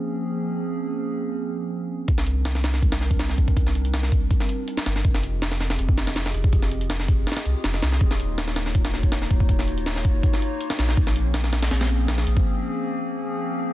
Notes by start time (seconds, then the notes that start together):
Already playing: F3 A#3 C4 C#4 G#4
2.08 C2 G3 C4 D4 D#4 A#4, kick, closed hi-hat
2.18 snare
2.27 closed hi-hat
2.45 snare, closed hi-hat
2.55 snare
2.63 G3 C4 D4 D#4 A#4, snare, closed hi-hat
2.74 snare
2.82 C2, kick, closed hi-hat
2.92 snare, closed hi-hat
3.01 snare
3.11 kick, closed hi-hat
3.19 snare, closed hi-hat
3.29 snare
3.38 C2, kick, closed hi-hat
3.48 kick
3.56 C2 G3 C4 D4 D#4 A#4, kick, closed hi-hat
3.67 snare
3.75 closed hi-hat
3.85 closed hi-hat
3.94 snare, closed hi-hat
4.03 snare
4.12 G3 C4 D4 D#4 A#4, kick, closed hi-hat
4.31 kick, closed hi-hat
4.40 snare
4.49 closed hi-hat
4.68 closed hi-hat
4.77 snare
4.86 G1, snare, closed hi-hat
4.96 snare
5.04 F1 C4 F4 G4 G#4 D#5, kick, closed hi-hat
5.14 snare
5.23 closed hi-hat
5.42 snare, closed hi-hat
5.52 snare
5.60 C4 F4 G4 G#4 D#5, snare, closed hi-hat
5.70 snare
5.79 F1, closed hi-hat
5.89 kick
5.98 snare, closed hi-hat
6.07 snare, closed hi-hat
6.16 snare, closed hi-hat
6.26 snare
6.34 F1, closed hi-hat
6.44 kick
6.53 F1 C4 F4 G4 G#4 D#5, kick, closed hi-hat
6.62 snare
6.71 closed hi-hat
6.81 closed hi-hat
6.90 snare, closed hi-hat
7.00 snare
7.08 C4 F4 G4 G#4 D#5, kick, closed hi-hat
7.27 snare, closed hi-hat
7.32 snare, closed hi-hat
7.37 snare, closed hi-hat
7.46 C2, closed hi-hat
7.64 F1, snare, closed hi-hat
7.73 C4 F4 G4 G#4 D#5, snare
7.82 C2, snare, closed hi-hat
7.92 snare
8.01 D#1 A#3 D#4 F4 F#4 C#5, kick, closed hi-hat
8.11 snare
8.20 closed hi-hat
8.38 snare, closed hi-hat
8.48 snare
8.56 A#3 D#4 F4 F#4 C#5, snare, closed hi-hat
8.66 snare
8.75 D#1, kick, closed hi-hat
8.85 snare, closed hi-hat
8.94 snare
9.03 kick, closed hi-hat
9.12 snare, closed hi-hat
9.22 snare
9.31 D#1, kick, closed hi-hat
9.40 kick
9.49 D#1 A#3 D#4 F4 F#4 C#5, kick, closed hi-hat
9.59 snare
9.68 closed hi-hat
9.78 closed hi-hat
9.86 snare, closed hi-hat
9.96 snare
10.04 A#3 D#4 F4 F#4 C#5, kick, closed hi-hat
10.23 kick, closed hi-hat
10.34 snare
10.42 closed hi-hat
10.61 closed hi-hat
10.70 snare
10.79 A#1, snare, closed hi-hat
10.89 snare
10.97 A#1 F3 A#3 C4 C#4 G#4, kick, closed hi-hat
11.07 snare
11.16 closed hi-hat
11.34 snare, closed hi-hat
11.44 snare
11.53 F3 A#3 C4 C#4 G#4, snare, closed hi-hat
11.63 snare, closed hi-hat
11.71 A#1, snare, closed hi-hat
11.81 snare, closed hi-hat
12.08 snare, closed hi-hat
12.18 snare
12.27 A#1, closed hi-hat
12.37 kick
12.46 F3 A#3 C4 C#4 G#4
13.01 F3 A#3 C4 C#4 G#4